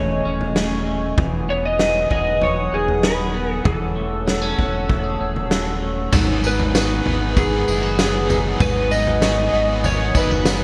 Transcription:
Already playing: sub bass E1, clean electric guitar E3 A3 C#4 G#4, analog synth pad A3 D#5 G#5 C#6, electric slide guitar C#5
0.25 sub bass D#1, clean electric guitar C#4
0.41 floor tom
0.56 clean electric guitar G#4, snare
0.87 clean electric guitar A3
1.18 sub bass E1, clean electric guitar E3, analog synth pad B4 F#5 D#6, kick, floor tom
1.48 clean electric guitar B3, electric slide guitar C#5
1.65 electric slide guitar D#5
1.79 clean electric guitar D#4, snare
2.10 sub bass E1, clean electric guitar G#4, electric slide guitar D#5, kick, floor tom
2.41 clean electric guitar F#3, electric slide guitar C#5, floor tom
2.72 sub bass D#1, clean electric guitar D#4, electric slide guitar G#4
2.88 floor tom
3.03 clean electric guitar G#4, electric slide guitar B4, snare
3.34 clean electric guitar B3
3.53 electric slide guitar A4
3.64 sub bass E1, clean electric guitar E3, electric slide guitar A4, analog synth pad C#5 A5 E6, kick, floor tom
3.95 clean electric guitar A3
4.26 clean electric guitar B3, snare
4.42 clean electric guitar C#4
4.58 sub bass E1, clean electric guitar F#4, kick, floor tom
4.89 clean electric guitar A3, kick, floor tom
5.00 electric slide guitar G#4
5.20 sub bass D#1, clean electric guitar C#4
5.36 floor tom
5.51 clean electric guitar F#4, snare
5.82 clean electric guitar A3
6.12 sub bass G#1, overdriven electric guitar G#2 D#3 F#3 B3 D#4 G#4, clean electric guitar G#2 F#4, analog synth pad B4 F#5 G#5 D#6, kick, floor tom, crash, tambourine
6.42 clean electric guitar B3, overdriven electric guitar B3 D#4 G#4, tambourine
6.47 overdriven electric guitar F#3, electric slide guitar B4, synth texture B4
6.60 floor tom
6.74 overdriven electric guitar F#3 B3 D#4, clean electric guitar F#4, electric slide guitar B4, snare, tambourine
6.79 overdriven electric guitar G#4
7.05 sub bass G#1, clean electric guitar B3, overdriven electric guitar D#4 G#4, floor tom
7.09 overdriven electric guitar F#3 B3
7.37 overdriven electric guitar G#2 D#3 F#3 B3 D#4 G#4, clean electric guitar D#3, electric slide guitar G#4, kick, floor tom, tambourine
7.67 sub bass F#1, overdriven electric guitar B3 D#4 G#4, clean electric guitar E4, tambourine
7.73 overdriven electric guitar F#3
7.83 clean electric guitar F#4
7.97 overdriven electric guitar F#3 B3, clean electric guitar F#3, electric slide guitar G#4, snare, tambourine
8.01 overdriven electric guitar D#4 G#4
8.28 clean electric guitar B3, overdriven electric guitar D#4 G#4, floor tom, tambourine
8.32 overdriven electric guitar F#3 B3
8.59 sub bass G#1, overdriven electric guitar G#2 D#3 F#3 B3 D#4, clean electric guitar G#2 F#4, electric slide guitar B4, kick, floor tom, tambourine
8.63 overdriven electric guitar G#4
8.90 clean electric guitar B3, overdriven electric guitar D#4 G#4, electric slide guitar D#5, tambourine
8.94 overdriven electric guitar F#3 B3
9.07 floor tom
9.20 overdriven electric guitar F#3 B3 D#4, clean electric guitar F#4, snare, tambourine
9.25 overdriven electric guitar G#4
9.50 sub bass G#1, clean electric guitar B3, overdriven electric guitar D#4 G#4
9.54 overdriven electric guitar F#3 B3
9.82 overdriven electric guitar G#2 D#3 F#3 B3 D#4 G#4, clean electric guitar D#3, electric slide guitar C#5, floor tom, tambourine
10.13 sub bass F#1, overdriven electric guitar D#4 G#4, clean electric guitar E4, kick, tambourine
10.17 overdriven electric guitar F#3 B3, electric slide guitar B4
10.30 clean electric guitar F#4, floor tom
10.45 overdriven electric guitar F#3 B3, clean electric guitar F#3, snare, tambourine
10.49 overdriven electric guitar D#4 G#4

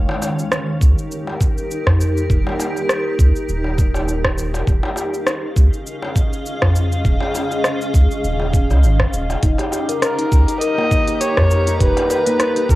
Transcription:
Already playing: ambient pad D#4 G4 A#4
0.09 darbuka tek
0.22 darbuka tek, shaker
0.39 shaker
0.52 cross-stick, shaker
0.81 sub bass C#2, kick, shaker
0.98 shaker
1.12 shaker
1.27 darbuka tek
1.41 kick, shaker
1.58 shaker
1.71 shaker
1.87 kick, cross-stick, darbuka ka, darbuka dum
2.01 shaker
2.17 shaker
2.30 sub bass D#1, kick, shaker
2.47 darbuka tek
2.60 darbuka tek, shaker
2.76 darbuka ka, shaker
2.89 cross-stick, shaker
3.19 sub bass C#2, kick, shaker
3.36 shaker
3.48 sub bass D#1, shaker
3.64 darbuka ka
3.78 kick, shaker
3.94 darbuka ka, darbuka tek, shaker
4.08 shaker
4.24 kick, cross-stick, darbuka ka
4.38 shaker
4.54 darbuka ka, darbuka tek, shaker
4.67 sub bass D#1, ambient pad C#4 G#4 D#5 F5, kick, shaker
4.83 darbuka tek
4.96 darbuka tek, shaker
5.14 shaker
5.27 cross-stick, shaker
5.56 sub bass C#2, kick, shaker
5.73 shaker
5.87 shaker
6.02 darbuka tek
6.16 kick, shaker
6.33 shaker
6.46 shaker
6.62 kick, cross-stick, darbuka ka, darbuka dum
6.76 shaker
6.92 shaker
7.05 sub bass D#1, kick, shaker
7.21 darbuka tek
7.35 darbuka tek, shaker
7.51 darbuka ka, shaker
7.64 cross-stick, shaker
7.81 shaker
7.94 sub bass C#2, kick, shaker
8.11 shaker
8.23 sub bass D#1, shaker
8.40 darbuka ka
8.54 kick, shaker
8.70 sub bass C#2, darbuka ka, darbuka tek, shaker
8.83 sub bass G#1, shaker
9.00 kick, cross-stick, darbuka ka
9.13 sub bass D#1, shaker
9.30 darbuka ka, darbuka tek, shaker
9.43 sub bass D#1, handpan D#4, ambient pad D#4 G4 A#5, kick, closed hi-hat, shaker
9.58 handpan G4, closed hi-hat, darbuka tek
9.72 handpan G4, darbuka tek, shaker
9.89 handpan A#4, closed hi-hat, shaker
10.02 kamancheh A#4, handpan A#4, cross-stick, closed hi-hat, shaker
10.19 handpan D#4, closed hi-hat
10.32 sub bass C#2, handpan G4, kick, shaker
10.48 handpan D#4, closed hi-hat, shaker
10.61 handpan A#4, kamancheh D#5, closed hi-hat, shaker
10.78 handpan A#3, darbuka tek
10.91 handpan D#4, kick, shaker
11.08 handpan G4, closed hi-hat, shaker
11.21 handpan G4, kamancheh C#5, closed hi-hat, shaker
11.37 handpan A#4, kick, cross-stick, darbuka ka, darbuka dum
11.51 handpan A#4, shaker
11.67 handpan D#4, closed hi-hat, shaker
11.80 sub bass D#1, handpan G4, kamancheh B4, kick, closed hi-hat, shaker
11.97 handpan D#4, closed hi-hat, darbuka tek
12.10 handpan A#4, darbuka tek, shaker
12.26 handpan A#3, closed hi-hat, darbuka ka, shaker
12.40 handpan D#4, cross-stick, closed hi-hat, shaker
12.56 handpan G4, closed hi-hat
12.69 sub bass C#2, handpan G4, kamancheh A#4, kick, shaker

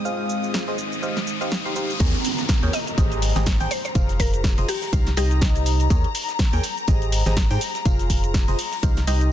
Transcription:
Already playing: ambient pad G#3 C4 D#4, string section D#6, riser
0.05 fm electric piano F4 G#4 C5 F5, shaker
0.30 shaker
0.43 shaker
0.54 snare, shaker
0.68 fm electric piano F4 G#4 C5 D#5
0.78 shaker
0.92 shaker
1.03 fm electric piano D#4 G4 C5 F5, shaker
1.17 snare, shaker
1.27 shaker
1.41 fm electric piano D#4 G4 C5 F5, shaker
1.52 snare, shaker
1.65 fm electric piano D#4 G4 C5 F5, shaker
1.76 fm electric piano D#4 G4 C5 F5, shaker
1.90 shaker
2.00 fm bass D#2, fm electric piano G#4 A#4 C#5 D#5, string section A#5, kick, closed hi-hat, crash, tambourine, downlifter, shaker
2.14 closed hi-hat
2.24 open hi-hat, tambourine, shaker
2.39 snare, closed hi-hat, shaker
2.49 kick, snare, closed hi-hat, tambourine, shaker
2.63 fm bass D#2, fm electric piano G#4 A#4 C#5 G5, closed hi-hat
2.73 synth pluck D#5, open hi-hat, tambourine, shaker
2.87 closed hi-hat, shaker
2.98 fm bass G#1, fm electric piano G4 G#4 C5 D#5, kick, closed hi-hat, tambourine, shaker
3.12 closed hi-hat, shaker
3.22 open hi-hat, tambourine, shaker
3.36 fm bass G#1, fm electric piano G4 G#4 C5 D#5, snare, closed hi-hat, shaker
3.46 kick, snare, closed hi-hat, tambourine, shaker
3.60 fm bass G#1, fm electric piano G4 G#4 C5 G5, closed hi-hat, shaker
3.71 synth pluck C5, open hi-hat, tambourine, shaker
3.84 synth pluck C5, snare, closed hi-hat, shaker
3.95 fm bass F1, fm electric piano F4 G#4 C5 F5, kick, closed hi-hat, tambourine, shaker
4.09 snare, closed hi-hat, shaker
4.20 synth pluck A#4, kick, open hi-hat, tambourine, shaker
4.34 closed hi-hat, shaker
4.44 kick, snare, closed hi-hat, tambourine, shaker
4.58 fm bass F1, fm electric piano F4 G#4 C5 D#5, closed hi-hat, shaker
4.68 synth pluck G4, open hi-hat, shaker
4.82 snare, closed hi-hat, shaker
4.93 fm bass C2, fm electric piano D#4 G4 C5 F5, kick, closed hi-hat, tambourine, shaker
5.06 snare, closed hi-hat, shaker
5.17 fm bass C2, fm electric piano D#4 G4 C5 D#5, synth pluck G4, open hi-hat, tambourine, shaker
5.31 closed hi-hat, shaker
5.41 kick, snare, closed hi-hat, tambourine, shaker
5.56 closed hi-hat, shaker
5.66 open hi-hat, tambourine, shaker
5.80 closed hi-hat, shaker
5.90 fm bass D#2, fm electric piano G#4 A#4 C#5 D#5, kick, closed hi-hat, tambourine, shaker
6.04 closed hi-hat
6.15 open hi-hat, tambourine, shaker
6.28 snare, closed hi-hat, shaker
6.39 kick, snare, closed hi-hat, tambourine, shaker
6.53 fm bass D#2, fm electric piano G#4 A#4 C#5 G5, closed hi-hat
6.63 open hi-hat, tambourine, shaker
6.77 closed hi-hat, shaker
6.88 fm bass G#1, fm electric piano G4 G#4 C5 D#5, kick, closed hi-hat, tambourine, shaker
7.02 closed hi-hat, shaker
7.12 open hi-hat, tambourine, shaker
7.26 fm bass G#1, fm electric piano G4 G#4 C5 D#5, snare, closed hi-hat, shaker
7.37 kick, snare, closed hi-hat, tambourine, shaker
7.51 fm bass G#2, fm electric piano G4 G#4 C5 G5, closed hi-hat, shaker
7.61 open hi-hat, tambourine, shaker
7.75 snare, closed hi-hat, shaker
7.85 fm bass F1, fm electric piano F4 G#4 C5 F5, kick, closed hi-hat, tambourine, shaker
7.99 snare, closed hi-hat, shaker
8.10 kick, open hi-hat, tambourine, shaker
8.24 closed hi-hat, shaker
8.34 kick, snare, closed hi-hat, tambourine, shaker
8.48 fm bass F1, fm electric piano F4 G#4 C5 D#5, closed hi-hat, shaker
8.59 open hi-hat, shaker
8.72 snare, closed hi-hat, shaker
8.83 fm bass C2, fm electric piano D#4 G4 C5 F5, kick, closed hi-hat, tambourine, shaker
8.97 snare, closed hi-hat, shaker
9.07 fm bass C2, fm electric piano D#4 G4 C5 D#5, open hi-hat, tambourine, shaker
9.21 closed hi-hat, shaker

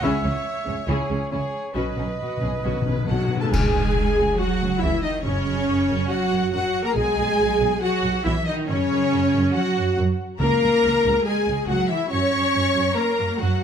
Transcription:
0.02 double bass section C#2, cello section C#3, viola section C#4 E4, violin section G#4 C#5, trumpet E5
0.23 double bass section C#2, cello section C#3, viola section G#3 C#4
0.27 violin section C#4
0.65 double bass section C#2, cello section C#3, viola section G#3 C#4
0.69 violin section C#4
0.87 double bass section C#2, cello section C#3, viola section C#4 E4, violin section G#4, trumpet C#5
1.09 double bass section C#2, cello section C#3, viola section G#3 C#4, violin section C#4
1.31 double bass section C#2, cello section C#3, viola section C#4, violin section E4 G#4, trumpet C#5
1.74 double bass section B1, cello section B2, timpani B2, viola section C#4 F#4, violin section B4, trumpet D#5
1.83 timpani B2
1.92 timpani B2
1.96 double bass section B1, cello section B2, viola section C#4, violin section D#4
2.07 timpani B2
2.16 timpani B2
2.22 timpani B2, violin section F#4
2.30 timpani B2
2.37 timpani B2
2.41 double bass section B1, cello section B2, viola section C#4, violin section G#4
2.46 timpani B2
2.52 timpani B2
2.60 timpani B2
2.64 double bass section B1, cello section B2, timpani B2, viola section C#4 F#4, violin section F#4
2.75 timpani B2
2.82 timpani B2
2.86 double bass section B1, cello section B2, timpani B2, viola section C#4, violin section B4
2.97 timpani B2
3.05 timpani B2, cello section B2 F#3, french horn section F#4, violin section F#5
3.09 double bass section B1, timpani B2, viola section C#4 D#4 F#4, violin section A4 F#5
3.20 timpani B2
3.28 timpani B2
3.33 timpani B2, violin section B4
3.39 cello section A3, french horn section A4, viola section A4, violin section A5
3.44 timpani B2, violin section A5
3.51 double bass section C#2, cello section G#3, french horn section G#4, viola section G#4, violin section G#5, concert bass drum, crash
3.55 violin section G#5
3.74 double bass section C#2
3.96 double bass section C#2
4.18 double bass section C#2
4.37 cello section F#3, french horn section F#4, viola section F#4, violin section F#5
4.61 double bass section C#2
4.79 double bass section C#2, cello section E3, viola section E4, french horn section E4, violin section E5
5.01 cello section D#3, french horn section D#4, viola section D#4, violin section D#5
5.23 double bass section F#2, cello section C#3, french horn section C#4, viola section C#4, violin section C#5
5.46 double bass section F#2
5.68 double bass section F#2
5.89 double bass section F#2
6.08 cello section F#3, french horn section F#4, viola section F#4, violin section F#5
6.32 double bass section F#2
6.53 double bass section F#2, cello section F#3, french horn section F#4, viola section F#4, violin section F#5
6.85 cello section A#3, french horn section A#4, viola section A#4, violin section A#5
6.94 double bass section B1, cello section G#3, viola section G#4, french horn section G#4, violin section G#5
7.17 double bass section B1
7.39 double bass section B1
7.60 double bass section B1
7.81 cello section F#3, viola section F#4, french horn section F#4, violin section F#5
8.04 double bass section B1
8.24 double bass section B1, cello section E3, viola section E4, french horn section E4, violin section E5
8.46 cello section D#3, french horn section D#4, viola section D#4, violin section D#5
8.67 double bass section F#2, cello section C#3, french horn section C#4, viola section C#4, violin section C#5
8.91 double bass section F#2
9.13 double bass section F#2
9.34 double bass section F#2
9.54 cello section F#3, viola section F#4, french horn section F#4, violin section F#5
9.77 double bass section F#2
9.98 double bass section F#2
10.40 double bass section C#2, timpani C#3, cello section A#3, viola section A#4, french horn section A#4, violin section A#5
10.62 double bass section C#2
10.84 double bass section C#2
11.05 double bass section C#2
11.25 cello section G#3, french horn section G#4, viola section G#4, violin section G#5
11.47 double bass section C#2
11.68 double bass section C#2, cello section F#3, french horn section F#4, viola section F#4, violin section F#5
11.89 cello section E3, viola section E4, french horn section E4, violin section E5
12.11 double bass section F#2, cello section C#4, viola section C#5, french horn section C#5, violin section C#6
12.33 double bass section F#2
12.55 double bass section F#2
12.76 double bass section F#2
12.97 cello section A#3, viola section A#4, french horn section A#4, violin section A#5
13.19 double bass section F#2
13.39 double bass section F#2, cello section F#3, french horn section F#4, viola section F#4, violin section F#5

